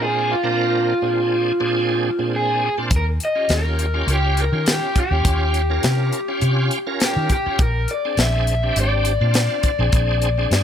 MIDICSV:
0, 0, Header, 1, 6, 480
1, 0, Start_track
1, 0, Tempo, 584795
1, 469, Time_signature, 4, 2, 24, 8
1, 8728, End_track
2, 0, Start_track
2, 0, Title_t, "Overdriven electric guitar"
2, 0, Program_c, 0, 29
2, 22, Note_on_c, 0, 68, 86
2, 252, Note_off_c, 0, 68, 0
2, 259, Note_on_c, 0, 65, 78
2, 1892, Note_off_c, 0, 65, 0
2, 1938, Note_on_c, 0, 68, 79
2, 2171, Note_off_c, 0, 68, 0
2, 2181, Note_on_c, 0, 68, 74
2, 2241, Note_off_c, 0, 68, 0
2, 2431, Note_on_c, 0, 70, 82
2, 2491, Note_off_c, 0, 70, 0
2, 2665, Note_on_c, 0, 75, 88
2, 2894, Note_off_c, 0, 75, 0
2, 2907, Note_on_c, 0, 70, 85
2, 3336, Note_off_c, 0, 70, 0
2, 3385, Note_on_c, 0, 67, 88
2, 3614, Note_off_c, 0, 67, 0
2, 3626, Note_on_c, 0, 70, 80
2, 3855, Note_off_c, 0, 70, 0
2, 3870, Note_on_c, 0, 67, 84
2, 4090, Note_off_c, 0, 67, 0
2, 4100, Note_on_c, 0, 67, 87
2, 5769, Note_off_c, 0, 67, 0
2, 5779, Note_on_c, 0, 67, 79
2, 5999, Note_off_c, 0, 67, 0
2, 6009, Note_on_c, 0, 67, 89
2, 6246, Note_off_c, 0, 67, 0
2, 6254, Note_on_c, 0, 70, 93
2, 6466, Note_off_c, 0, 70, 0
2, 6492, Note_on_c, 0, 74, 103
2, 6727, Note_off_c, 0, 74, 0
2, 6736, Note_on_c, 0, 76, 90
2, 7216, Note_off_c, 0, 76, 0
2, 7224, Note_on_c, 0, 74, 101
2, 8728, Note_off_c, 0, 74, 0
2, 8728, End_track
3, 0, Start_track
3, 0, Title_t, "Tonewheel organ"
3, 0, Program_c, 1, 16
3, 0, Note_on_c, 1, 46, 63
3, 0, Note_on_c, 1, 60, 63
3, 0, Note_on_c, 1, 62, 62
3, 0, Note_on_c, 1, 65, 79
3, 288, Note_off_c, 1, 46, 0
3, 290, Note_off_c, 1, 60, 0
3, 290, Note_off_c, 1, 62, 0
3, 291, Note_off_c, 1, 65, 0
3, 356, Note_on_c, 1, 46, 67
3, 357, Note_on_c, 1, 62, 61
3, 361, Note_on_c, 1, 60, 68
3, 364, Note_on_c, 1, 70, 81
3, 770, Note_off_c, 1, 46, 0
3, 771, Note_off_c, 1, 62, 0
3, 773, Note_off_c, 1, 60, 0
3, 775, Note_off_c, 1, 70, 0
3, 837, Note_on_c, 1, 46, 75
3, 839, Note_on_c, 1, 60, 81
3, 839, Note_on_c, 1, 62, 77
3, 843, Note_on_c, 1, 68, 79
3, 1251, Note_off_c, 1, 46, 0
3, 1252, Note_off_c, 1, 60, 0
3, 1252, Note_off_c, 1, 62, 0
3, 1254, Note_off_c, 1, 68, 0
3, 1314, Note_on_c, 1, 46, 78
3, 1315, Note_on_c, 1, 60, 77
3, 1317, Note_on_c, 1, 62, 67
3, 1319, Note_on_c, 1, 68, 85
3, 1730, Note_off_c, 1, 46, 0
3, 1730, Note_off_c, 1, 60, 0
3, 1731, Note_off_c, 1, 62, 0
3, 1732, Note_off_c, 1, 68, 0
3, 1795, Note_on_c, 1, 60, 67
3, 1796, Note_on_c, 1, 46, 71
3, 1798, Note_on_c, 1, 62, 68
3, 1800, Note_on_c, 1, 68, 81
3, 2210, Note_off_c, 1, 60, 0
3, 2211, Note_off_c, 1, 46, 0
3, 2212, Note_off_c, 1, 62, 0
3, 2213, Note_off_c, 1, 68, 0
3, 2278, Note_on_c, 1, 46, 72
3, 2281, Note_on_c, 1, 62, 67
3, 2282, Note_on_c, 1, 60, 71
3, 2284, Note_on_c, 1, 65, 77
3, 2389, Note_off_c, 1, 46, 0
3, 2390, Note_off_c, 1, 62, 0
3, 2391, Note_off_c, 1, 60, 0
3, 2392, Note_off_c, 1, 65, 0
3, 2752, Note_on_c, 1, 61, 62
3, 2754, Note_on_c, 1, 65, 62
3, 2762, Note_on_c, 1, 67, 72
3, 3169, Note_off_c, 1, 61, 0
3, 3170, Note_off_c, 1, 65, 0
3, 3174, Note_off_c, 1, 67, 0
3, 3233, Note_on_c, 1, 61, 77
3, 3235, Note_on_c, 1, 65, 67
3, 3239, Note_on_c, 1, 67, 82
3, 3650, Note_off_c, 1, 61, 0
3, 3650, Note_off_c, 1, 65, 0
3, 3652, Note_off_c, 1, 67, 0
3, 3717, Note_on_c, 1, 61, 63
3, 3723, Note_on_c, 1, 67, 70
3, 3724, Note_on_c, 1, 65, 65
3, 4132, Note_off_c, 1, 61, 0
3, 4134, Note_off_c, 1, 67, 0
3, 4135, Note_off_c, 1, 65, 0
3, 4197, Note_on_c, 1, 61, 68
3, 4203, Note_on_c, 1, 65, 59
3, 4209, Note_on_c, 1, 67, 76
3, 4611, Note_off_c, 1, 61, 0
3, 4614, Note_off_c, 1, 65, 0
3, 4617, Note_off_c, 1, 67, 0
3, 4677, Note_on_c, 1, 61, 89
3, 4683, Note_on_c, 1, 65, 75
3, 4685, Note_on_c, 1, 70, 88
3, 5091, Note_off_c, 1, 61, 0
3, 5094, Note_off_c, 1, 65, 0
3, 5095, Note_off_c, 1, 70, 0
3, 5157, Note_on_c, 1, 61, 87
3, 5160, Note_on_c, 1, 65, 77
3, 5164, Note_on_c, 1, 67, 82
3, 5571, Note_off_c, 1, 61, 0
3, 5573, Note_off_c, 1, 65, 0
3, 5575, Note_off_c, 1, 67, 0
3, 5635, Note_on_c, 1, 65, 72
3, 5636, Note_on_c, 1, 61, 72
3, 5640, Note_on_c, 1, 70, 81
3, 6050, Note_off_c, 1, 61, 0
3, 6050, Note_off_c, 1, 65, 0
3, 6052, Note_off_c, 1, 70, 0
3, 6123, Note_on_c, 1, 61, 77
3, 6125, Note_on_c, 1, 65, 63
3, 6129, Note_on_c, 1, 67, 78
3, 6231, Note_off_c, 1, 61, 0
3, 6232, Note_off_c, 1, 65, 0
3, 6234, Note_off_c, 1, 67, 0
3, 6608, Note_on_c, 1, 60, 68
3, 6609, Note_on_c, 1, 62, 61
3, 6609, Note_on_c, 1, 68, 72
3, 7016, Note_off_c, 1, 60, 0
3, 7016, Note_off_c, 1, 62, 0
3, 7017, Note_off_c, 1, 68, 0
3, 7082, Note_on_c, 1, 60, 80
3, 7087, Note_on_c, 1, 62, 68
3, 7090, Note_on_c, 1, 67, 93
3, 7493, Note_off_c, 1, 60, 0
3, 7495, Note_off_c, 1, 62, 0
3, 7497, Note_off_c, 1, 67, 0
3, 7559, Note_on_c, 1, 60, 68
3, 7562, Note_on_c, 1, 62, 57
3, 7564, Note_on_c, 1, 65, 74
3, 7972, Note_off_c, 1, 60, 0
3, 7973, Note_off_c, 1, 62, 0
3, 7974, Note_off_c, 1, 65, 0
3, 8035, Note_on_c, 1, 60, 89
3, 8038, Note_on_c, 1, 62, 80
3, 8044, Note_on_c, 1, 68, 96
3, 8449, Note_off_c, 1, 60, 0
3, 8451, Note_off_c, 1, 62, 0
3, 8454, Note_off_c, 1, 68, 0
3, 8516, Note_on_c, 1, 60, 77
3, 8524, Note_on_c, 1, 62, 70
3, 8526, Note_on_c, 1, 68, 86
3, 8728, Note_off_c, 1, 60, 0
3, 8728, Note_off_c, 1, 62, 0
3, 8728, Note_off_c, 1, 68, 0
3, 8728, End_track
4, 0, Start_track
4, 0, Title_t, "Fingered electric bass"
4, 0, Program_c, 2, 33
4, 2387, Note_on_c, 2, 39, 97
4, 2603, Note_off_c, 2, 39, 0
4, 2869, Note_on_c, 2, 39, 82
4, 3300, Note_off_c, 2, 39, 0
4, 3342, Note_on_c, 2, 37, 101
4, 3678, Note_off_c, 2, 37, 0
4, 3713, Note_on_c, 2, 51, 83
4, 3932, Note_off_c, 2, 51, 0
4, 4192, Note_on_c, 2, 39, 74
4, 4294, Note_off_c, 2, 39, 0
4, 4309, Note_on_c, 2, 39, 93
4, 4740, Note_off_c, 2, 39, 0
4, 4791, Note_on_c, 2, 48, 88
4, 5006, Note_off_c, 2, 48, 0
4, 5269, Note_on_c, 2, 48, 89
4, 5484, Note_off_c, 2, 48, 0
4, 5880, Note_on_c, 2, 51, 79
4, 5978, Note_off_c, 2, 51, 0
4, 6229, Note_on_c, 2, 34, 98
4, 6444, Note_off_c, 2, 34, 0
4, 6709, Note_on_c, 2, 34, 92
4, 7139, Note_off_c, 2, 34, 0
4, 7192, Note_on_c, 2, 32, 95
4, 7522, Note_off_c, 2, 32, 0
4, 7558, Note_on_c, 2, 46, 88
4, 7773, Note_off_c, 2, 46, 0
4, 8035, Note_on_c, 2, 34, 77
4, 8135, Note_off_c, 2, 34, 0
4, 8149, Note_on_c, 2, 34, 98
4, 8579, Note_off_c, 2, 34, 0
4, 8626, Note_on_c, 2, 43, 83
4, 8728, Note_off_c, 2, 43, 0
4, 8728, End_track
5, 0, Start_track
5, 0, Title_t, "Muted fingered electric bass strokes"
5, 6126, Note_on_c, 9, 29, 38
5, 6208, Note_off_c, 9, 29, 0
5, 8728, End_track
6, 0, Start_track
6, 0, Title_t, "Drums"
6, 2386, Note_on_c, 9, 42, 77
6, 2388, Note_on_c, 9, 36, 103
6, 2468, Note_off_c, 9, 42, 0
6, 2470, Note_off_c, 9, 36, 0
6, 2628, Note_on_c, 9, 42, 57
6, 2710, Note_off_c, 9, 42, 0
6, 2864, Note_on_c, 9, 42, 60
6, 2875, Note_on_c, 9, 38, 83
6, 2946, Note_off_c, 9, 42, 0
6, 2957, Note_off_c, 9, 38, 0
6, 3110, Note_on_c, 9, 42, 54
6, 3192, Note_off_c, 9, 42, 0
6, 3349, Note_on_c, 9, 42, 77
6, 3431, Note_off_c, 9, 42, 0
6, 3588, Note_on_c, 9, 42, 55
6, 3670, Note_off_c, 9, 42, 0
6, 3827, Note_on_c, 9, 42, 83
6, 3839, Note_on_c, 9, 38, 103
6, 3909, Note_off_c, 9, 42, 0
6, 3921, Note_off_c, 9, 38, 0
6, 4068, Note_on_c, 9, 42, 62
6, 4069, Note_on_c, 9, 36, 77
6, 4150, Note_off_c, 9, 42, 0
6, 4151, Note_off_c, 9, 36, 0
6, 4308, Note_on_c, 9, 36, 104
6, 4308, Note_on_c, 9, 42, 85
6, 4390, Note_off_c, 9, 42, 0
6, 4391, Note_off_c, 9, 36, 0
6, 4548, Note_on_c, 9, 42, 56
6, 4630, Note_off_c, 9, 42, 0
6, 4785, Note_on_c, 9, 42, 75
6, 4797, Note_on_c, 9, 38, 96
6, 4867, Note_off_c, 9, 42, 0
6, 4879, Note_off_c, 9, 38, 0
6, 5028, Note_on_c, 9, 42, 59
6, 5110, Note_off_c, 9, 42, 0
6, 5264, Note_on_c, 9, 42, 70
6, 5346, Note_off_c, 9, 42, 0
6, 5507, Note_on_c, 9, 42, 54
6, 5589, Note_off_c, 9, 42, 0
6, 5747, Note_on_c, 9, 42, 74
6, 5758, Note_on_c, 9, 38, 102
6, 5829, Note_off_c, 9, 42, 0
6, 5840, Note_off_c, 9, 38, 0
6, 5987, Note_on_c, 9, 42, 53
6, 5990, Note_on_c, 9, 36, 67
6, 6069, Note_off_c, 9, 42, 0
6, 6072, Note_off_c, 9, 36, 0
6, 6227, Note_on_c, 9, 42, 77
6, 6230, Note_on_c, 9, 36, 115
6, 6310, Note_off_c, 9, 42, 0
6, 6313, Note_off_c, 9, 36, 0
6, 6468, Note_on_c, 9, 42, 54
6, 6550, Note_off_c, 9, 42, 0
6, 6708, Note_on_c, 9, 42, 65
6, 6720, Note_on_c, 9, 38, 90
6, 6791, Note_off_c, 9, 42, 0
6, 6802, Note_off_c, 9, 38, 0
6, 6953, Note_on_c, 9, 42, 49
6, 7035, Note_off_c, 9, 42, 0
6, 7191, Note_on_c, 9, 42, 75
6, 7273, Note_off_c, 9, 42, 0
6, 7427, Note_on_c, 9, 42, 58
6, 7509, Note_off_c, 9, 42, 0
6, 7665, Note_on_c, 9, 42, 78
6, 7677, Note_on_c, 9, 38, 104
6, 7748, Note_off_c, 9, 42, 0
6, 7759, Note_off_c, 9, 38, 0
6, 7906, Note_on_c, 9, 42, 52
6, 7909, Note_on_c, 9, 36, 72
6, 7988, Note_off_c, 9, 42, 0
6, 7991, Note_off_c, 9, 36, 0
6, 8146, Note_on_c, 9, 42, 83
6, 8149, Note_on_c, 9, 36, 102
6, 8228, Note_off_c, 9, 42, 0
6, 8231, Note_off_c, 9, 36, 0
6, 8386, Note_on_c, 9, 42, 60
6, 8468, Note_off_c, 9, 42, 0
6, 8630, Note_on_c, 9, 42, 76
6, 8642, Note_on_c, 9, 38, 93
6, 8712, Note_off_c, 9, 42, 0
6, 8724, Note_off_c, 9, 38, 0
6, 8728, End_track
0, 0, End_of_file